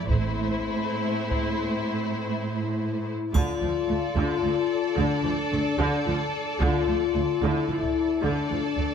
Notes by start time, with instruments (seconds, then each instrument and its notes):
0.08 double bass section A1, cello section A2, viola section A3, french horn section C4 E4, violin section E4 C5, taiko
1.31 taiko
2.55 french horn section E4
3.34 cello section D2, double bass section D2, viola section D3, french horn section F4, violin section A4 D5, taiko, triangle
3.62 cello section D2, double bass section D2, viola section F3
3.88 cello section D2, double bass section D2, viola section A3
4.16 cello section D2, double bass section D2, viola section D3
4.44 cello section D2, double bass section D2, viola section F3
4.97 double bass section D2, cello section D2, viola section D3, french horn section D4
5.25 double bass section D2, cello section D2, viola section F3
5.52 double bass section D2, cello section D2, viola section A3
5.79 double bass section D2, cello section D2, viola section D3, french horn section D4
6.06 cello section D2, double bass section D2, viola section F3
6.61 cello section D2, double bass section D2, viola section D3, french horn section F4, taiko
6.88 cello section D2, double bass section D2, viola section F3
7.15 double bass section D2, cello section D2, viola section A3
7.42 double bass section D2, cello section D2, viola section D3, french horn section E4
7.69 cello section D2, double bass section D2, viola section F3
7.83 taiko
8.22 cello section D2, double bass section D2, viola section D3, french horn section D4, violin section A4 D5
8.51 cello section D2, double bass section D2, viola section F3
8.77 double bass section D2, cello section D2, viola section A3